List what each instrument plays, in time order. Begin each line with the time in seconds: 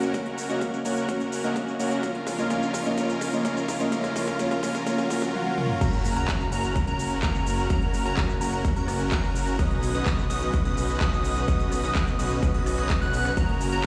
Already playing: detuned saw bass F#1, supersaw synth C#4 F#4 A#4, riser
0.02 closed hi-hat, shaker
0.13 detuned saw bass F#1, felt piano A#3 C#4 F#4 C#5, supersaw synth C#4 F#4 A#4, kick, closed hi-hat, shaker
0.26 closed hi-hat
0.38 open hi-hat, shaker
0.49 detuned saw bass F#1, felt piano A#3 C#4 F#4 D#5, supersaw synth C#4 F#4 A#4, closed hi-hat, shaker
0.61 kick, closed hi-hat, shaker
0.74 shaker
0.84 detuned saw bass F#1, felt piano A#3 C#4 F#4 C#5, supersaw synth C#4 F#4 A#4, open hi-hat, shaker
0.97 closed hi-hat, shaker
1.08 detuned saw bass F#1, felt piano A#3 C#4 F#4 C#5, supersaw synth F#4 A#4, kick, closed hi-hat, shaker
1.20 closed hi-hat, shaker
1.32 open hi-hat, shaker
1.43 detuned saw bass F#2, felt piano A#3 C#4 F#4 D#5, supersaw synth C#4 F#4 A#4, closed hi-hat, shaker
1.56 kick, closed hi-hat, shaker
1.68 shaker
1.79 detuned saw bass F#2, felt piano A#3 C#4 F#4 C#5, supersaw synth C#4 F#4 A#4, open hi-hat, shaker
1.91 closed hi-hat, shaker
2.03 felt piano A#3 C#4 F4 C#5, supersaw synth C#4 F4 A#4, kick, closed hi-hat, shaker
2.15 closed hi-hat
2.27 kick, open hi-hat, shaker
2.38 felt piano A#3 C#4 F4 D#5, supersaw synth C#4 F4 A#4, closed hi-hat, shaker
2.50 felt piano A#3 C#4 F4 C#5, supersaw synth C#4 F4 A#4, kick, closed hi-hat, shaker
2.63 shaker
2.74 kick, open hi-hat, shaker
2.85 felt piano A#3 C#4 F4 D#5, supersaw synth C#4 F4 A#4, closed hi-hat, shaker
2.97 felt piano A#3 C#4 F4 C#5, supersaw synth C#4 F4 A#4, kick, closed hi-hat, shaker
3.09 closed hi-hat, shaker
3.21 kick, open hi-hat, shaker
3.32 detuned saw bass F1, felt piano A#3 C#4 F4 D#5, supersaw synth C#4 F4 A#4, shaker
3.44 detuned saw bass F1, felt piano A#3 C#4 F4 C#5, supersaw synth C#4 F4 A#4, kick, closed hi-hat, shaker
3.57 shaker
3.68 kick, open hi-hat, shaker
3.80 felt piano A#3 C#4 F4 D#5, supersaw synth C#4 F4 A#4, closed hi-hat, shaker
3.92 detuned saw bass F1, felt piano A#3 C#4 F4 C#5, supersaw synth C#4 F4 A#4, kick, closed hi-hat, shaker
4.04 kick, closed hi-hat, shaker
4.15 felt piano A#3 C#4 F4 C#5, supersaw synth C#4 F4 A#4, kick, open hi-hat, shaker
4.28 kick, closed hi-hat, shaker
4.39 felt piano A#3 C#4 F4 C#5, supersaw synth C#4 F4 A#4, kick, closed hi-hat, shaker
4.51 kick, closed hi-hat, shaker
4.62 felt piano A#3 C#4 F4 C#5, supersaw synth C#4 F4 A#4, kick, open hi-hat, shaker
4.75 kick, closed hi-hat, shaker
4.86 felt piano A#3 C#4 F4 C#5, supersaw synth C#4 F4 A#4, kick, closed hi-hat, swell, shaker
4.98 kick, closed hi-hat, shaker
5.10 felt piano A#3 C#4 F4 C#5, supersaw synth C#4 F4 A#4, kick, open hi-hat, shaker
5.22 kick, closed hi-hat, shaker
5.34 supersaw synth C#4 F4 A#4, high tom
5.46 high tom
5.58 supersaw synth C#4 F4 A#4, mid tom
5.69 mid tom
5.81 detuned saw bass F#1, supersaw synth C#4 F#4, digital synth lead A#5, kick, closed hi-hat, crash, sub drop, shaker
5.93 closed hi-hat
6.05 open hi-hat, shaker
6.16 detuned saw bass F#1, supersaw synth C#4 F#4 A#4, digital synth lead A#5, closed hi-hat, shaker
6.28 kick, clap, closed hi-hat, shaker
6.41 shaker
6.52 detuned saw bass F#1, supersaw synth C#4 F#4 A#4, digital synth lead A#5, open hi-hat, shaker
6.64 closed hi-hat, shaker
6.76 kick, closed hi-hat, shaker
6.87 detuned saw bass F#1, supersaw synth C#4 F#4 A#4, digital synth lead A#5, closed hi-hat, shaker
6.99 open hi-hat, shaker
7.11 closed hi-hat, shaker
7.23 detuned saw bass F#1, supersaw synth C#4 F#4 A#4, digital synth lead A#5, kick, clap, closed hi-hat, shaker
7.35 shaker
7.46 open hi-hat, shaker
7.58 closed hi-hat, shaker
7.70 detuned saw bass F#1, supersaw synth C#4 F#4 A#4, digital synth lead A#5, kick, closed hi-hat, shaker
7.82 closed hi-hat
7.94 open hi-hat, shaker
8.05 detuned saw bass F#1, supersaw synth C#4 F#4 A#4, digital synth lead A#5, closed hi-hat, shaker
8.17 kick, clap, closed hi-hat, shaker
8.30 shaker
8.41 detuned saw bass F#1, supersaw synth C#4 F#4 A#4, digital synth lead A#5, open hi-hat, shaker
8.53 shaker
8.65 kick, closed hi-hat, shaker
8.76 detuned saw bass F#1, supersaw synth C#4 F#4 A#4, digital synth lead A#5, closed hi-hat, shaker
8.88 cross-stick, open hi-hat, shaker
9.00 closed hi-hat, shaker
9.12 detuned saw bass F#1, supersaw synth C#4 F#4 A#4, digital synth lead A#5, kick, clap, closed hi-hat, shaker
9.24 shaker
9.35 open hi-hat, shaker
9.47 closed hi-hat, shaker
9.59 detuned saw bass B1, supersaw synth C#4 D#4 F#4 B4 D#5, digital synth lead D#6, kick, closed hi-hat, shaker
9.71 closed hi-hat
9.83 open hi-hat, shaker
9.94 detuned saw bass B1, supersaw synth C#4 D#4 F#4 B4 D#5, digital synth lead D#6, closed hi-hat, shaker
10.06 kick, clap, closed hi-hat, shaker
10.19 shaker
10.30 detuned saw bass B1, supersaw synth C#4 D#4 F#4 B4 D#5, digital synth lead D#6, open hi-hat, shaker
10.42 closed hi-hat, shaker
10.54 kick, closed hi-hat, shaker
10.65 detuned saw bass B1, supersaw synth C#4 D#4 F#4 B4 D#5, digital synth lead D#6, closed hi-hat, shaker
10.77 open hi-hat, shaker
10.89 closed hi-hat, shaker
11.01 detuned saw bass B1, supersaw synth C#4 D#4 F#4 B4 D#5, digital synth lead D#6, kick, clap, closed hi-hat, shaker
11.13 shaker
11.24 open hi-hat, shaker
11.36 closed hi-hat, shaker
11.48 detuned saw bass B1, supersaw synth C#4 D#4 F#4 B4 D#5, digital synth lead D#6, kick, closed hi-hat, shaker
11.60 closed hi-hat, shaker
11.72 cross-stick, open hi-hat, shaker
11.83 detuned saw bass B1, supersaw synth C#4 D#4 F#4 B4 D#5, digital synth lead D#6, closed hi-hat, shaker
11.95 kick, clap, closed hi-hat, shaker
12.07 closed hi-hat, shaker
12.19 detuned saw bass B1, supersaw synth C#4 D#4 F#4 B4 D#5, digital synth lead D#6, open hi-hat, shaker
12.31 closed hi-hat, shaker
12.43 kick, closed hi-hat, shaker
12.54 detuned saw bass B1, supersaw synth C#4 D#4 F#4 B4 D#5, digital synth lead D#6, closed hi-hat, shaker
12.66 cross-stick, open hi-hat, shaker
12.78 detuned saw bass B1, supersaw synth C#4 D#4 F#4 B4 D#5, digital synth lead D#6, closed hi-hat, shaker
12.90 kick, clap, closed hi-hat, shaker
13.02 detuned saw bass B1, supersaw synth C#4 D#4 F#4 B4 F#5, digital synth lead F#6, shaker
13.13 open hi-hat, shaker
13.25 cross-stick, closed hi-hat, shaker
13.37 detuned saw bass F#1, supersaw synth C#4 F#4 A#4, digital synth lead A#5, kick, closed hi-hat, shaker
13.49 closed hi-hat
13.61 open hi-hat, shaker
13.72 detuned saw bass F#1, supersaw synth C#4 F#4 A#4, digital synth lead A#5, closed hi-hat, shaker